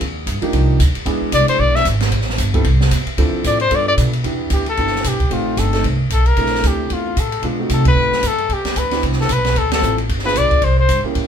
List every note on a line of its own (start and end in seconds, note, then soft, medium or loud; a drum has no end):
0.00 0.26 D#2 medium
0.00 kick soft
0.00 ride medium
0.27 0.41 G2 medium
0.27 kick soft
0.27 hi-hat pedal soft
0.27 ride medium
0.41 0.77 F3 medium
0.41 0.78 A#3 medium
0.41 0.78 D4 medium
0.41 0.78 D#4 medium
0.41 0.78 G4 medium
0.41 muted upright bass stroke soft
0.41 ride soft
0.53 0.79 C2 medium
0.53 kick soft
0.53 ride medium
0.79 0.94 D2 medium
0.79 kick soft
0.79 hi-hat pedal medium
0.79 ride medium
0.95 muted upright bass stroke soft
0.95 ride soft
1.06 1.20 E2 medium
1.06 1.79 G#3 medium
1.06 1.79 B3 medium
1.06 1.79 D4 medium
1.06 1.79 E4 medium
1.06 1.79 G#4 medium
1.06 kick soft
1.06 ride medium
1.22 muted upright bass stroke soft
1.32 1.46 C2 medium
1.32 1.48 D5 medium
1.32 kick soft
1.32 hi-hat pedal medium
1.32 ride medium
1.48 1.61 C5 medium
1.48 ride medium
1.59 1.84 B1 medium
1.59 1.77 D5 medium
1.59 kick soft
1.75 1.86 E5 medium
1.75 snare soft
1.85 2.11 G#1 medium
1.85 kick soft
1.85 hi-hat pedal medium
1.85 ride medium
2.00 snare medium
2.00 ride soft
2.11 2.37 A1 medium
2.11 kick soft
2.11 ride medium
2.21 snare soft
2.29 snare soft
2.38 2.64 G1 loud
2.38 kick soft
2.38 hi-hat pedal medium
2.38 ride medium
2.54 2.64 G3 medium
2.54 2.64 B3 medium
2.54 2.64 C4 medium
2.54 2.64 E4 medium
2.54 2.65 A4 medium
2.54 kick soft
2.54 ride soft
2.64 2.90 C2 medium
2.64 kick soft
2.64 ride medium
2.81 snare soft
2.91 3.05 E2 medium
2.91 kick soft
2.91 hi-hat pedal medium
2.91 ride medium
3.06 muted upright bass stroke soft
3.06 ride soft
3.17 3.32 D2 medium
3.17 3.57 F3 medium
3.17 3.57 C4 medium
3.17 3.57 D4 medium
3.17 3.57 E4 medium
3.17 3.57 A4 medium
3.17 kick soft
3.17 ride medium
3.32 muted upright bass stroke soft
3.44 3.70 A2 medium
3.44 3.60 D5 medium
3.44 kick soft
3.44 hi-hat pedal medium
3.44 ride medium
3.60 3.77 C5 medium
3.60 ride soft
3.70 3.97 G2 medium
3.70 4.10 G3 medium
3.70 4.10 B3 medium
3.70 4.10 D4 medium
3.70 4.10 F4 medium
3.70 4.10 A4 medium
3.70 kick soft
3.70 ride medium
3.75 3.88 D5 medium
3.88 3.94 D5 medium
3.97 4.23 B2 medium
3.97 kick soft
3.97 hi-hat pedal medium
3.97 ride medium
4.13 ride soft
4.24 4.50 E2 medium
4.24 4.63 B3 medium
4.24 4.63 D4 medium
4.24 4.63 E4 medium
4.24 4.63 G4 medium
4.24 kick soft
4.24 ride soft
4.50 4.76 D2 medium
4.50 4.66 G4 medium
4.50 kick soft
4.50 hi-hat pedal soft
4.50 ride medium
4.66 5.09 A4 medium
4.66 ride soft
4.77 5.03 G1 medium
4.77 5.16 B3 medium
4.77 5.17 D4 soft
4.77 5.17 E4 soft
4.77 5.17 G4 medium
4.77 kick soft
4.77 ride soft
4.87 snare soft
4.95 snare soft
5.04 5.30 B1 medium
5.04 5.34 G4 medium
5.04 kick soft
5.04 hi-hat pedal medium
5.04 ride medium
5.20 kick soft
5.20 ride soft
5.30 5.56 A1 medium
5.30 5.69 A3 medium
5.30 5.70 C4 medium
5.30 5.70 D#4 soft
5.30 5.60 F4 medium
5.30 5.70 G4 medium
5.30 kick soft
5.30 ride medium
5.57 5.83 G1 medium
5.57 5.85 A4 medium
5.57 kick soft
5.57 hi-hat pedal soft
5.57 ride medium
5.73 5.83 A3 medium
5.73 5.83 C4 soft
5.73 5.83 D#4 soft
5.73 5.84 A4 medium
5.73 snare soft
5.73 ride soft
5.84 6.09 C2 medium
5.84 kick soft
5.84 ride medium
6.10 6.36 B1 medium
6.10 6.28 A4 medium
6.10 kick soft
6.10 hi-hat pedal soft
6.10 ride medium
6.26 6.69 A#4 medium
6.26 ride soft
6.37 6.63 A#1 medium
6.37 7.10 A3 medium
6.37 7.10 C4 soft
6.37 7.11 D4 soft
6.37 7.11 E4 medium
6.37 kick soft
6.37 ride medium
6.46 snare soft
6.55 snare soft
6.63 6.89 D2 medium
6.63 kick soft
6.63 hi-hat pedal soft
6.63 ride medium
6.67 6.94 G4 medium
6.90 7.16 E2 medium
6.90 7.21 F4 medium
6.90 kick soft
6.90 ride soft
7.16 7.42 A2 medium
7.16 7.45 A4 medium
7.16 kick soft
7.16 hi-hat pedal medium
7.16 ride medium
7.32 ride soft
7.42 7.69 B2 medium
7.42 7.57 G#3 medium
7.42 7.57 B3 medium
7.42 7.57 D4 medium
7.42 7.57 F4 medium
7.42 kick soft
7.42 ride soft
7.59 8.17 A3 medium
7.59 8.17 C4 soft
7.59 8.17 D#4 soft
7.59 8.17 F#4 medium
7.69 7.95 C3 medium
7.69 7.86 A4 medium
7.69 kick soft
7.69 hi-hat pedal medium
7.69 ride medium
7.85 8.28 B4 medium
7.85 kick medium
7.85 ride medium
7.95 8.10 A2 medium
8.11 muted upright bass stroke soft
8.11 snare soft
8.23 8.49 F#2 medium
8.23 kick soft
8.23 hi-hat pedal medium
8.23 ride medium
8.27 8.55 A4 medium
8.38 ride soft
8.49 8.64 E2 medium
8.49 kick soft
8.49 ride soft
8.53 8.80 G4 medium
8.64 muted upright bass stroke soft
8.64 snare soft
8.64 ride soft
8.76 9.02 D2 medium
8.76 9.04 B4 medium
8.76 kick soft
8.76 hi-hat pedal soft
8.76 ride medium
8.91 9.27 B3 medium
8.91 9.27 D4 medium
8.91 9.27 E4 medium
8.91 9.28 G4 medium
8.91 snare soft
8.91 ride soft
9.03 9.28 C2 medium
9.03 kick soft
9.03 ride medium
9.12 snare soft
9.21 9.34 A4 medium
9.21 snare soft
9.29 9.55 B1 medium
9.29 9.60 B4 medium
9.29 kick soft
9.29 hi-hat pedal medium
9.29 ride medium
9.45 snare soft
9.45 ride soft
9.56 9.81 D2 medium
9.56 9.72 A4 medium
9.56 kick soft
9.56 ride soft
9.72 9.97 A4 medium
9.72 snare medium
9.72 ride medium
9.82 10.08 A1 medium
9.82 9.96 C4 medium
9.82 9.97 E4 soft
9.82 9.97 F4 soft
9.82 9.97 A4 medium
9.82 hi-hat pedal soft
9.98 ride soft
10.09 10.35 G1 medium
10.09 kick soft
10.09 ride medium
10.19 snare soft
10.25 10.60 B3 medium
10.25 10.60 D4 medium
10.25 10.60 F4 medium
10.25 10.61 G#4 medium
10.25 10.39 B4 medium
10.25 snare soft
10.35 10.50 B1 medium
10.35 10.66 D5 medium
10.35 kick soft
10.35 hi-hat pedal medium
10.35 ride medium
10.51 muted upright bass stroke soft
10.51 kick soft
10.51 ride soft
10.62 10.88 C2 medium
10.62 10.79 C5 medium
10.62 ride soft
10.80 11.03 C5 medium
10.89 11.03 G2 medium
10.89 kick soft
10.89 hi-hat pedal soft
10.89 ride medium
11.04 11.27 A#3 medium
11.04 11.27 C#4 medium
11.04 11.27 E4 medium
11.04 11.27 G4 medium
11.04 muted upright bass stroke soft
11.15 11.27 A2 medium
11.15 kick soft
11.15 ride soft